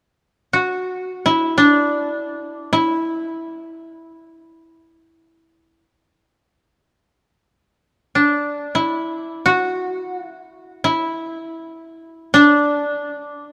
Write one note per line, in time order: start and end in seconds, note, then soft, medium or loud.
0.53 2.65 F#4 soft
1.26 2.72 E4 soft
1.58 4.00 D4 medium
2.73 5.81 E4 soft
8.15 10.58 D4 soft
8.75 10.32 E4 soft
9.46 10.16 F#4 medium
10.16 10.32 F4 medium
10.32 10.84 E4 medium
10.84 13.11 E4 medium
12.34 13.52 D4 medium